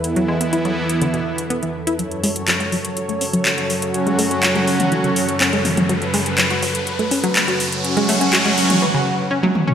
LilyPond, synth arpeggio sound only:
\new Staff \with { instrumentName = "Synth arpeggio sound" } { \clef bass \time 4/4 \key fis \minor \tempo 4 = 123 r16 fis16 gis16 b16 e'16 fis16 r8 d16 b,16 r8 b16 e16 r16 e'16 | fis16 r16 gis16 r16 fis16 fis'16 fis16 r8 a16 cis'16 fis16 r16 fis'16 r8 | r16 gis16 a16 cis'16 fis'16 gis16 r8 e16 cis16 r8 cis'16 gis16 r16 fis16 | fis16 r16 gis16 r16 fis16 fis'16 fis16 r8 a16 cis'16 fis16 r16 fis'16 r8 |
r16 gis16 a16 cis'16 fis'16 gis16 r8 e16 cis16 r8 cis'16 fis16 r16 cis'16 | }